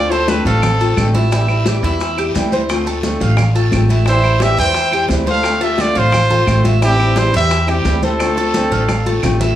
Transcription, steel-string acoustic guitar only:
0.00 0.10 A3 medium
0.10 0.27 A3 soft
0.10 0.28 C4 soft
0.10 0.27 F4 soft
0.28 0.62 D3 medium
0.28 0.62 A3 medium
0.28 0.62 C4 medium
0.28 0.63 F4 medium
0.63 muted steel-string acoustic guitar stroke medium
0.80 0.97 A3 soft
0.80 0.97 C4 soft
0.80 0.97 F4 medium
0.97 1.14 D3 medium
0.97 1.14 A3 medium
0.97 1.14 C4 medium
0.97 1.13 F4 medium
1.14 1.32 A3 soft
1.14 1.31 C4 soft
1.14 1.31 F4 medium
1.32 1.48 E3 medium
1.32 1.49 G3 medium
1.32 1.49 C4 medium
1.32 1.48 E4 medium
1.49 1.66 G3 soft
1.49 1.66 C4 soft
1.49 1.65 E4 soft
1.66 1.99 E3 medium
1.66 1.99 G3 medium
1.66 1.99 C4 medium
1.66 2.00 E4 medium
2.00 muted steel-string acoustic guitar stroke medium
2.16 2.34 G3 soft
2.16 2.34 C4 soft
2.16 2.34 E4 medium
2.34 2.51 E3 medium
2.34 2.52 G3 medium
2.34 2.51 C4 medium
2.34 2.50 E4 medium
2.51 2.69 G3 soft
2.51 2.69 C4 soft
2.51 2.68 E4 medium
2.69 2.86 D3 medium
2.69 2.86 A3 medium
2.69 2.86 C4 medium
2.69 2.85 F4 medium
2.86 3.03 A3 soft
2.86 3.04 C4 soft
2.86 3.03 F4 soft
3.03 3.37 D3 medium
3.03 3.37 A3 medium
3.03 3.38 C4 medium
3.03 3.38 F4 medium
3.38 muted steel-string acoustic guitar stroke medium
3.55 3.71 A3 soft
3.55 3.72 C4 soft
3.55 3.71 F4 soft
3.72 3.89 D3 medium
3.72 3.89 A3 medium
3.72 3.90 C4 medium
3.72 3.89 F4 medium
3.90 4.06 A3 soft
3.90 4.06 C4 soft
3.90 4.06 F4 medium
4.06 4.23 E3 medium
4.06 4.23 G3 medium
4.06 4.23 C4 medium
4.06 4.22 E4 medium
4.23 4.40 G3 soft
4.23 4.40 C4 soft
4.23 4.40 E4 soft
4.40 4.73 E3 medium
4.40 4.73 G3 medium
4.40 4.73 C4 medium
4.40 4.74 E4 medium
4.74 muted steel-string acoustic guitar stroke medium
4.92 5.08 G3 soft
4.92 5.09 C4 soft
4.92 5.09 E4 medium
5.09 5.26 E3 medium
5.09 5.26 G3 medium
5.09 5.26 C4 medium
5.09 5.25 E4 medium
5.26 5.44 G3 soft
5.26 5.44 C4 soft
5.26 5.43 E4 soft
5.43 5.60 D3 medium
5.43 5.61 A3 medium
5.43 5.60 C4 medium
5.43 5.59 F4 medium
5.60 5.77 A3 soft
5.60 5.78 C4 soft
5.60 5.78 F4 soft
5.78 6.11 D3 medium
5.78 6.12 A3 medium
5.78 6.12 C4 medium
5.78 6.13 F4 medium
6.12 muted steel-string acoustic guitar stroke medium
6.29 6.45 A3 soft
6.29 6.46 C4 medium
6.29 6.47 F4 soft
6.46 6.63 D3 medium
6.46 6.64 A3 medium
6.46 6.64 C4 medium
6.46 6.62 F4 medium
6.64 6.81 A3 soft
6.64 6.81 C4 soft
6.64 6.81 F4 medium
6.81 6.98 E3 medium
6.81 6.99 G3 medium
6.81 6.98 C4 medium
6.81 6.97 E4 medium
6.98 7.14 G3 soft
6.98 7.15 C4 soft
6.98 7.15 E4 soft
7.14 7.48 E3 medium
7.14 7.48 G3 medium
7.14 7.49 C4 medium
7.14 7.50 E4 medium
7.49 muted steel-string acoustic guitar stroke medium
7.67 7.85 G3 soft
7.67 7.85 C4 medium
7.67 7.84 E4 medium
7.85 8.02 E3 medium
7.85 8.02 G3 medium
7.85 8.02 C4 medium
7.85 8.00 E4 medium
8.02 8.19 G3 soft
8.02 8.19 C4 soft
8.02 8.19 E4 medium
8.19 8.36 D3 medium
8.19 8.37 A3 medium
8.19 8.37 C4 medium
8.19 8.36 F4 medium
8.37 8.54 A3 soft
8.37 8.54 C4 soft
8.37 8.54 F4 soft
8.54 8.88 D3 medium
8.54 8.88 A3 medium
8.54 8.88 C4 medium
8.54 8.88 F4 medium
8.89 muted steel-string acoustic guitar stroke medium
9.06 9.22 A3 soft
9.06 9.23 C4 soft
9.06 9.23 F4 medium
9.22 9.39 D3 medium
9.22 9.40 A3 medium
9.22 9.40 C4 medium
9.22 9.38 F4 medium
9.40 9.55 A3 soft
9.40 9.55 C4 soft
9.40 9.55 F4 medium

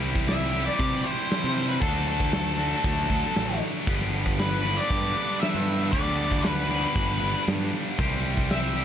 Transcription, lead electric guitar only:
0.28 0.65 E5 medium
0.66 1.06 D5 medium
1.04 1.65 C5 medium
1.69 1.74 B4 medium
1.81 2.06 A4 medium
2.08 3.58 A4 medium
4.39 4.79 B4 medium
4.77 5.40 D5 medium
5.40 5.91 E5 medium
5.91 6.46 D5 medium
6.41 7.42 B4 medium
8.51 8.85 E5 medium

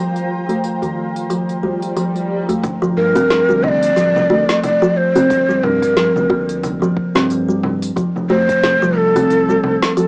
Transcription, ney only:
2.97 3.65 A#4 loud
3.63 3.69 D#5 loud
3.68 4.63 D5 loud
4.64 4.98 D5 loud
4.97 5.65 C5 loud
5.64 6.64 A#4 medium
8.30 8.98 C5 loud
8.97 9.96 A4 loud
9.97 10.08 A4 loud

